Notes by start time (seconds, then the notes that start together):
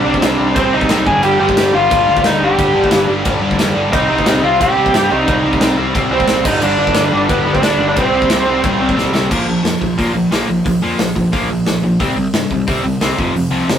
Already playing: D4 D5
0.05 C2 C3 G3 C4
0.14 kick
0.22 C2 C3 G3 C4, snare, crash
0.38 C2 C3 G3 C4
0.55 C2 C3 G3 C4 C5, kick, crash
0.72 C3 G3 C4 D#4 D#5
0.81 kick
0.89 B1 C3 G3 C4, snare, crash
1.06 G1 G2 D3 G3 G#4 G#5, kick
1.23 G1 G2 D3 G3 G4 G5, crash
1.40 G1 G2 D3 G3 G4 G5
1.49 kick
1.57 G1 G2 D3 G3, snare, crash
1.74 G1 G2 D3 G3 F4 F5
1.90 G1 G2 D3 G3, kick, crash
2.08 G1 G2 D3 G3
2.17 kick
2.23 D2 G2 D3 G3 D#4 D#5, snare, crash
2.41 G1 G2 D3 G3 G4 G5
2.58 G1 G2 D3 G3, kick, crash
2.75 G1 G2 D3 G3
2.84 kick
2.91 G1 G2 D3 G3 F5, snare, crash
3.07 G1 G2 D3 G3
3.24 G1 G2 D3 G3, kick, crash
3.41 G2 D3 G3
3.51 kick
3.58 F1 G2 D3 G3, snare, crash
3.75 G1 G2 D3 G3
3.91 C2 C3 G3 C4 D#4 D#5, kick, crash
4.09 C2 C3 G3 C4
4.18 kick
4.26 C2 C3 G3 C4, snare, crash
4.43 C2 C3 G3 C4 F4 F5
4.60 C2 C3 G3 C4 G4 G5, kick, crash
4.76 C2 C3 G3 C4
4.86 kick
4.93 G2 C3 G3 C4, snare, crash
5.10 C2 C3 G3 C4 D#4 D#5
5.27 C2 C3 G3 C4, kick, crash
5.44 C2 C3 G3 C4
5.53 kick
5.60 C2 C3 G3 C4, snare, crash
5.77 C2 C3 G3 C4
5.94 C2 C3 G3 C4, kick, crash
6.11 C3 G3 C4 C5
6.20 kick
6.27 B1 C3 G3 C4, snare, crash
6.45 G1 G2 D3 G3 D#4 D#5, kick, crash
6.61 G1 G2 D3 G3 D4 D5, crash
6.78 G1 G2 D3 G3
6.87 kick
6.95 G1 G2 D3 G3, snare, crash
7.11 G1 G2 D3 G3
7.29 G1 G2 D3 G3 B3 B4, kick, crash
7.46 G1 G2 D3 G3
7.55 C4 C5, kick
7.62 D2 G2 D3 G3 D4 D5, snare, crash
7.78 G1 G2 D3 G3
7.89 D4 D5
7.96 C2 C3 G3 C4 C5, kick, crash
8.12 C2 C3 G3 C4
8.22 kick
8.29 C2 C3 G3 C4, snare, crash
8.46 C2 C3 G3 C4
8.62 C2 C3 G3 C4 B4, kick, crash
8.80 C3 G3 C4
8.89 kick
8.96 B1 C3 G3 C4, snare
9.13 C2 C3 G3 C4, snare
9.30 A#1 A#2 F3 A#3, kick, crash
9.47 A#1 A#2 F3
9.63 F2 A#2 F3, snare, open hi-hat
9.81 A#1 A#2 F3, kick
9.98 A#2 F3 A#3, kick, open hi-hat
10.14 A#1 A#2 F3
10.31 A#1 A#2 F3 A#3, snare, open hi-hat
10.48 A#1 A#2 F3
10.65 A#1 A#2 F3, kick, open hi-hat
10.83 F2 A#2 F3 A#3
10.99 A#1 A#2 F3, snare, open hi-hat
11.15 A#1 A#2 F3, kick
11.32 A#1 A#2 F3 A#3, kick, open hi-hat
11.49 A#1 A#2 F3
11.65 A#1 A#2 F3, snare, open hi-hat
11.82 A#1 A#2 F3
12.00 C2 C3 G3 C4, kick, open hi-hat
12.16 C2 C3 G3
12.33 G2 C3 G3, snare, open hi-hat
12.50 C2 C3 G3, kick
12.67 C3 G3 C4, kick, open hi-hat
12.83 C2 C3 G3
13.00 C2 C3 G3 C4, snare, open hi-hat
13.17 F1 F2 C3 F3, kick
13.34 F1 F2 C3, open hi-hat
13.51 C2 F2 C3 F3
13.68 F1 F2 C3, snare, open hi-hat